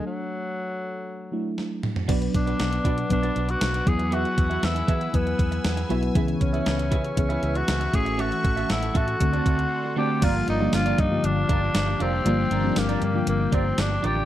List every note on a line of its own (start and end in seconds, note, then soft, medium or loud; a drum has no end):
0.00 1.29 F#3 medium
0.00 1.29 A3 medium
0.00 1.30 D4 medium
0.00 1.30 A4 medium
0.06 1.54 F#3 medium
1.32 2.07 F#3 medium
1.32 2.09 A3 soft
1.32 2.08 D4 soft
1.32 2.09 E4 medium
1.58 snare soft
1.83 mid tom medium
1.96 floor tom medium
2.08 2.27 B1 loud
2.08 3.02 F#3 medium
2.08 3.02 B3 medium
2.08 2.29 D4 medium
2.08 3.02 D4 medium
2.08 2.21 F#4 medium
2.08 7.90 B4 medium
2.08 3.02 B4 medium
2.08 2.21 B4 medium
2.08 3.85 D5 medium
2.08 2.20 D5 medium
2.08 6.12 F#5 medium
2.08 3.85 D6 medium
2.08 kick loud
2.08 closed hi-hat medium
2.08 crash medium
2.21 muted clean electric guitar stroke soft
2.21 closed hi-hat soft
2.34 2.53 B1 medium
2.34 3.07 D4 medium
2.34 muted clean electric guitar stroke soft
2.34 kick medium
2.34 closed hi-hat medium
2.46 2.58 D4 soft
2.46 2.58 F#4 medium
2.46 2.59 B4 medium
2.46 2.59 D5 medium
2.46 closed hi-hat soft
2.59 2.78 B1 medium
2.59 muted clean electric guitar stroke soft
2.59 snare medium
2.59 closed hi-hat medium
2.72 muted clean electric guitar stroke soft
2.72 closed hi-hat medium
2.84 3.03 B2 medium
2.84 3.05 D4 medium
2.84 2.97 F#4 medium
2.84 2.97 B4 medium
2.84 2.96 D5 loud
2.84 kick medium
2.84 closed hi-hat medium
2.97 muted clean electric guitar stroke soft
2.97 closed hi-hat soft
3.10 3.29 B1 medium
3.10 3.80 F#3 medium
3.10 3.80 B3 medium
3.10 3.80 D4 medium
3.10 3.51 D4 loud
3.10 3.81 B4 medium
3.10 muted clean electric guitar stroke soft
3.10 kick medium
3.10 closed hi-hat loud
3.23 3.34 D4 medium
3.23 3.35 F#4 medium
3.23 3.35 B4 medium
3.23 3.36 D5 medium
3.23 closed hi-hat soft
3.35 3.54 B1 medium
3.35 3.52 D4 medium
3.35 3.48 F#4 medium
3.35 3.48 B4 medium
3.35 3.47 D5 medium
3.35 closed hi-hat medium
3.48 3.90 F#4 loud
3.48 muted clean electric guitar stroke soft
3.48 closed hi-hat medium
3.61 3.80 B1 medium
3.61 muted clean electric guitar stroke soft
3.61 snare loud
3.61 closed hi-hat medium
3.74 muted clean electric guitar stroke soft
3.74 closed hi-hat medium
3.86 4.23 E2 medium
3.86 4.80 F#3 medium
3.86 4.80 B3 medium
3.86 4.80 E4 medium
3.86 4.80 G#4 medium
3.86 4.15 G#4 medium
3.86 7.89 G#5 medium
3.86 6.13 E6 medium
3.86 kick loud
3.86 closed hi-hat medium
3.99 muted clean electric guitar stroke soft
3.99 closed hi-hat medium
4.11 4.32 B3 medium
4.11 4.24 F#4 medium
4.11 4.66 F#4 loud
4.11 4.24 G#4 medium
4.11 4.23 E5 medium
4.11 closed hi-hat medium
4.24 muted clean electric guitar stroke soft
4.24 closed hi-hat soft
4.37 4.56 E2 medium
4.37 muted clean electric guitar stroke soft
4.37 kick medium
4.37 closed hi-hat medium
4.50 4.61 B3 medium
4.50 4.62 F#4 medium
4.50 4.62 G#4 medium
4.50 4.62 E5 medium
4.50 closed hi-hat soft
4.63 4.81 E2 loud
4.63 5.17 E4 medium
4.63 muted clean electric guitar stroke soft
4.63 snare loud
4.63 closed hi-hat medium
4.75 muted clean electric guitar stroke soft
4.75 closed hi-hat medium
4.88 5.07 E3 medium
4.88 5.08 B3 medium
4.88 5.01 F#4 medium
4.88 5.00 G#4 medium
4.88 5.00 E5 loud
4.88 kick medium
4.88 closed hi-hat medium
5.01 muted clean electric guitar stroke soft
5.01 closed hi-hat soft
5.13 5.32 E2 medium
5.13 5.84 F#3 medium
5.13 5.84 B3 medium
5.13 5.91 B3 medium
5.13 5.84 E4 medium
5.13 5.84 B4 medium
5.13 muted clean electric guitar stroke soft
5.13 kick medium
5.13 closed hi-hat loud
5.26 muted clean electric guitar stroke soft
5.26 closed hi-hat soft
5.39 5.57 E2 loud
5.39 kick medium
5.39 closed hi-hat medium
5.52 muted clean electric guitar stroke soft
5.52 closed hi-hat medium
5.64 5.83 E2 loud
5.64 snare loud
5.64 closed hi-hat medium
5.77 muted clean electric guitar stroke soft
5.77 closed hi-hat medium
5.89 6.08 B1 medium
5.89 6.13 F#3 medium
5.89 6.10 B3 medium
5.89 6.13 B3 medium
5.89 6.13 E4 medium
5.89 6.02 F#4 medium
5.89 6.02 G#4 medium
5.89 6.14 B4 loud
5.89 6.01 E5 medium
5.89 closed hi-hat medium
6.03 muted clean electric guitar stroke soft
6.03 closed hi-hat soft
6.15 6.34 C#2 loud
6.15 7.09 E3 medium
6.15 7.09 B3 medium
6.15 7.09 C#4 medium
6.15 6.36 E4 medium
6.15 6.28 G#4 medium
6.15 7.09 G#4 loud
6.15 6.27 B4 medium
6.15 9.18 E5 medium
6.15 6.26 E5 medium
6.15 9.18 C#6 medium
6.15 kick loud
6.15 closed hi-hat medium
6.28 muted clean electric guitar stroke soft
6.28 closed hi-hat soft
6.40 6.59 C#2 loud
6.40 7.14 C#4 medium
6.40 muted clean electric guitar stroke soft
6.40 kick loud
6.40 closed hi-hat medium
6.53 6.65 E4 soft
6.53 6.65 G#4 medium
6.53 6.65 B4 medium
6.53 6.66 E5 medium
6.53 closed hi-hat soft
6.66 6.93 C#2 loud
6.66 muted clean electric guitar stroke soft
6.66 snare loud
6.66 closed hi-hat medium
6.79 muted clean electric guitar stroke soft
6.79 closed hi-hat medium
6.91 7.10 C#3 medium
6.91 7.12 E4 medium
6.91 7.04 G#4 medium
6.91 7.03 B4 medium
6.91 7.03 E5 medium
6.91 kick medium
6.91 closed hi-hat medium
7.04 muted clean electric guitar stroke medium
7.04 closed hi-hat soft
7.16 7.36 C#2 medium
7.16 7.87 E3 medium
7.16 7.87 B3 medium
7.16 7.87 C#4 medium
7.16 7.58 C#4 medium
7.16 7.88 G#4 medium
7.16 muted clean electric guitar stroke soft
7.16 kick medium
7.16 closed hi-hat loud
7.29 7.41 E4 medium
7.29 7.41 G#4 medium
7.29 7.42 B4 medium
7.29 7.42 E5 medium
7.29 closed hi-hat soft
7.42 7.61 C#2 loud
7.42 7.59 E4 medium
7.42 7.55 G#4 medium
7.42 7.54 B4 medium
7.42 7.53 E5 medium
7.42 closed hi-hat medium
7.55 7.96 F#4 loud
7.55 muted clean electric guitar stroke soft
7.55 closed hi-hat medium
7.67 7.86 C#2 medium
7.67 muted clean electric guitar stroke soft
7.67 snare loud
7.67 closed hi-hat medium
7.80 muted clean electric guitar stroke soft
7.80 closed hi-hat medium
7.93 8.30 A1 loud
7.93 8.87 E3 medium
7.93 8.87 A3 medium
7.93 8.87 C#4 medium
7.93 8.87 F#4 medium
7.93 8.21 G#4 loud
7.93 10.20 A4 medium
7.93 9.19 F#5 medium
7.93 kick loud
7.93 closed hi-hat medium
8.05 muted clean electric guitar stroke soft
8.05 closed hi-hat soft
8.18 8.39 C#4 medium
8.18 8.31 F#4 medium
8.18 8.70 F#4 loud
8.18 8.30 A4 medium
8.18 8.30 E5 medium
8.18 closed hi-hat medium
8.31 muted clean electric guitar stroke soft
8.31 closed hi-hat soft
8.44 8.63 A1 loud
8.44 muted clean electric guitar stroke soft
8.44 kick medium
8.44 closed hi-hat medium
8.56 8.68 C#4 medium
8.56 8.68 F#4 medium
8.56 8.69 A4 medium
8.56 8.69 E5 medium
8.56 closed hi-hat soft
8.69 8.88 A1 loud
8.69 8.98 E4 medium
8.69 muted clean electric guitar stroke soft
8.69 snare loud
8.69 closed hi-hat medium
8.82 muted clean electric guitar stroke soft
8.82 closed hi-hat medium
8.94 9.13 A2 medium
8.94 9.15 C#4 medium
8.94 9.07 F#4 medium
8.94 9.97 F#4 loud
8.94 9.07 A4 medium
8.94 9.06 E5 medium
8.94 kick loud
8.94 closed hi-hat medium
9.07 muted clean electric guitar stroke soft
9.07 closed hi-hat medium
9.20 9.39 D2 loud
9.20 9.90 D3 medium
9.20 9.91 A3 medium
9.20 9.91 C4 medium
9.20 9.91 F#4 medium
9.20 10.21 D5 medium
9.20 10.21 F#5 medium
9.20 10.21 C6 medium
9.20 muted clean electric guitar stroke soft
9.20 kick medium
9.20 closed hi-hat loud
9.33 9.44 C4 medium
9.33 9.45 F#4 medium
9.33 9.45 A4 medium
9.33 9.46 D5 medium
9.33 closed hi-hat soft
9.45 9.64 D2 medium
9.45 9.62 C4 medium
9.45 9.58 F#4 medium
9.45 9.58 A4 medium
9.45 9.57 D5 medium
9.45 kick medium
9.45 closed hi-hat medium
9.58 muted clean electric guitar stroke soft
9.58 closed hi-hat medium
9.84 muted clean electric guitar stroke soft
9.96 10.20 D3 medium
9.96 10.20 A3 medium
9.96 10.17 C4 medium
9.96 10.20 C4 medium
9.96 10.09 F#4 medium
9.96 10.21 F#4 medium
9.96 10.25 G4 loud
9.96 10.09 A4 medium
9.96 10.08 D5 loud
10.09 muted clean electric guitar stroke medium
10.22 10.41 G1 loud
10.22 10.57 D3 medium
10.22 10.57 F3 medium
10.22 10.57 G3 medium
10.22 10.58 A#3 medium
10.22 10.42 D4 medium
10.22 10.35 F4 medium
10.22 10.58 F4 medium
10.22 10.48 F4 loud
10.22 14.25 G4 medium
10.22 10.34 A#4 medium
10.22 14.25 D5 medium
10.22 10.34 D5 loud
10.22 12.24 F5 medium
10.22 kick loud
10.22 closed hi-hat medium
10.22 crash loud
10.35 muted clean electric guitar stroke soft
10.47 10.66 G1 loud
10.47 10.61 D4 medium
10.47 10.76 D#4 loud
10.47 10.60 F4 medium
10.47 10.60 A#4 medium
10.47 10.59 D5 medium
10.47 closed hi-hat medium
10.60 11.07 D3 medium
10.60 11.07 F3 medium
10.60 11.07 G3 medium
10.60 11.07 A#3 medium
10.60 11.07 D4 medium
10.60 10.72 D4 medium
10.60 10.72 F4 medium
10.60 10.73 A#4 medium
10.60 10.73 D5 medium
10.73 10.91 G1 loud
10.73 11.01 F4 loud
10.73 muted clean electric guitar stroke soft
10.73 snare loud
10.73 closed hi-hat medium
10.73 tambourine medium
10.86 10.97 D4 medium
10.86 10.98 F4 medium
10.86 10.98 A#4 medium
10.86 10.98 D5 medium
10.86 closed hi-hat medium
10.98 11.17 G2 loud
10.98 11.26 D#4 loud
10.98 kick loud
10.98 closed hi-hat medium
11.11 12.04 D3 medium
11.11 12.04 F3 medium
11.11 12.05 G3 medium
11.11 12.05 A#3 medium
11.11 12.05 F4 medium
11.11 muted clean electric guitar stroke soft
11.24 11.42 G1 loud
11.24 12.03 D4 loud
11.24 muted clean electric guitar stroke soft
11.24 closed hi-hat loud
11.36 muted clean electric guitar stroke soft
11.49 11.68 G1 loud
11.49 11.70 D4 medium
11.49 11.62 F4 medium
11.49 11.61 A#4 medium
11.49 11.60 D5 loud
11.49 kick loud
11.49 closed hi-hat medium
11.62 muted clean electric guitar stroke soft
11.74 11.93 G1 loud
11.74 muted clean electric guitar stroke soft
11.74 snare loud
11.74 closed hi-hat medium
11.74 tambourine medium
11.87 muted clean electric guitar stroke medium
12.00 12.19 F1 loud
12.00 12.79 C4 loud
12.00 12.20 D4 medium
12.00 12.13 F4 medium
12.00 12.12 A#4 medium
12.00 12.11 D5 medium
12.00 closed hi-hat medium
12.13 muted clean electric guitar stroke soft
12.25 12.44 G1 loud
12.25 12.60 D3 medium
12.25 12.61 F3 medium
12.25 12.61 G3 medium
12.25 12.61 A#3 medium
12.25 12.46 D4 medium
12.25 12.38 F4 medium
12.25 12.61 F4 medium
12.25 12.37 A#4 medium
12.25 12.37 D5 medium
12.25 14.25 G5 medium
12.25 closed hi-hat medium
12.38 muted clean electric guitar stroke soft
12.50 12.69 G1 loud
12.50 12.64 D4 medium
12.50 12.63 F4 medium
12.50 12.63 A#4 medium
12.50 12.62 D5 medium
12.50 closed hi-hat medium
12.63 13.10 D3 medium
12.63 13.10 F3 medium
12.63 13.11 G3 medium
12.63 13.11 A#3 medium
12.63 12.70 C4 medium
12.63 12.75 D4 medium
12.63 12.75 F4 medium
12.63 12.76 A#4 medium
12.63 12.76 D5 medium
12.70 13.14 D4 medium
12.76 12.95 G1 loud
12.76 13.03 A#3 medium
12.76 muted clean electric guitar stroke soft
12.76 snare loud
12.76 closed hi-hat medium
12.76 tambourine medium
12.89 13.01 D4 medium
12.89 13.01 F4 medium
12.89 13.01 A#4 medium
12.89 13.02 D5 medium
12.89 closed hi-hat medium
13.02 13.20 G2 loud
13.02 13.26 A#3 medium
13.02 muted clean electric guitar stroke soft
13.02 closed hi-hat medium
13.14 14.08 D3 medium
13.14 14.08 F3 medium
13.14 14.08 G3 medium
13.14 14.08 A#3 medium
13.14 14.08 F4 medium
13.14 muted clean electric guitar stroke medium
13.27 13.46 G1 loud
13.27 13.56 A#3 medium
13.27 closed hi-hat loud
13.40 muted clean electric guitar stroke soft
13.52 13.71 G1 loud
13.52 13.81 C4 medium
13.52 13.73 D4 medium
13.52 13.65 F4 medium
13.52 13.65 A#4 medium
13.52 13.64 D5 loud
13.52 kick loud
13.52 closed hi-hat medium
13.65 muted clean electric guitar stroke soft
13.78 13.96 G1 loud
13.78 14.07 D4 loud
13.78 snare loud
13.78 closed hi-hat medium
13.78 tambourine medium
13.90 muted clean electric guitar stroke medium
14.03 14.22 A1 loud
14.03 14.24 D4 medium
14.03 14.16 F4 medium
14.03 14.25 G4 loud
14.03 14.15 A#4 medium
14.03 14.15 D5 loud
14.03 closed hi-hat medium
14.16 muted clean electric guitar stroke soft